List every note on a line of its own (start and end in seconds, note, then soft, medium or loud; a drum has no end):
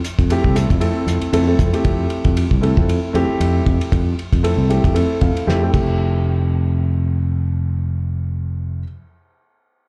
0.04 hi-hat pedal medium
0.04 ride medium
0.18 0.39 F2 medium
0.18 kick medium
0.18 ride medium
0.30 0.54 A3 medium
0.30 0.54 C4 medium
0.30 0.54 E4 medium
0.30 0.54 G4 medium
0.30 ride medium
0.44 0.65 C2 medium
0.44 kick medium
0.55 0.79 A3 medium
0.55 0.79 C4 medium
0.55 0.79 E4 medium
0.55 0.79 A4 medium
0.55 hi-hat pedal medium
0.55 ride medium
0.70 0.91 F2 medium
0.70 kick medium
0.70 ride medium
0.80 1.28 A3 medium
0.80 1.29 C4 medium
0.80 1.29 E4 medium
0.80 1.28 A4 medium
0.80 ride medium
1.06 1.18 F2 medium
1.06 hi-hat pedal medium
1.06 ride soft
1.21 muted fingered electric bass stroke soft
1.21 ride soft
1.32 1.54 F2 medium
1.32 1.45 A3 medium
1.32 1.45 C4 medium
1.32 1.46 E4 medium
1.32 1.46 A4 medium
1.32 ride medium
1.47 1.70 A3 medium
1.47 1.70 C4 medium
1.47 1.71 E4 medium
1.47 1.71 A4 medium
1.59 1.70 F2 medium
1.59 kick medium
1.59 hi-hat pedal medium
1.59 ride medium
1.73 2.55 A3 medium
1.73 2.55 C4 medium
1.73 2.55 E4 medium
1.73 2.56 G4 medium
1.73 ride soft
1.85 2.06 F2 medium
1.85 kick medium
1.85 ride medium
2.10 ride soft
2.25 2.46 F2 medium
2.25 kick medium
2.25 ride soft
2.37 ride medium
2.51 2.72 C2 medium
2.51 kick medium
2.61 3.09 A3 medium
2.61 3.10 C4 medium
2.61 3.10 E4 medium
2.61 3.10 A4 medium
2.61 ride soft
2.77 2.98 F2 medium
2.77 kick medium
2.89 ride medium
3.13 3.26 F2 medium
3.13 4.09 A3 medium
3.13 4.09 C4 medium
3.13 4.10 E4 medium
3.13 4.10 G4 medium
3.13 ride soft
3.29 muted fingered electric bass stroke soft
3.40 3.61 F2 medium
3.40 ride medium
3.66 3.78 F2 medium
3.66 kick medium
3.66 ride medium
3.81 ride medium
3.92 4.13 F2 medium
3.92 kick medium
3.92 ride medium
4.19 ride soft
4.33 4.53 F2 medium
4.33 kick medium
4.33 ride soft
4.43 4.67 A3 medium
4.43 4.68 C4 medium
4.43 4.68 E4 medium
4.43 4.68 A4 medium
4.43 ride medium
4.57 4.78 C2 medium
4.69 4.92 A3 medium
4.69 4.93 C4 medium
4.69 4.93 E4 medium
4.69 4.94 G4 medium
4.69 ride soft
4.84 5.05 F2 medium
4.84 kick medium
4.84 ride medium
4.94 5.43 A3 medium
4.94 5.43 C4 medium
4.94 5.43 E4 medium
4.94 5.43 A4 medium
4.94 ride medium
5.21 5.33 F2 medium
5.21 5.46 F5 medium
5.21 kick medium
5.21 ride medium
5.35 muted fingered electric bass stroke soft
5.35 ride soft
5.46 5.68 F2 medium
5.46 5.60 A3 medium
5.46 5.61 C4 medium
5.46 5.60 E4 medium
5.46 5.61 G4 medium
5.46 5.72 G5 medium
5.46 snare soft
5.62 5.69 A3 medium
5.62 5.70 C4 medium
5.62 5.72 E4 medium
5.62 5.73 G4 medium
5.70 8.84 F1 medium
5.70 8.80 A3 medium
5.70 8.80 C4 medium
5.70 8.82 E4 medium
5.70 kick medium
5.70 crash medium
5.74 8.84 G4 medium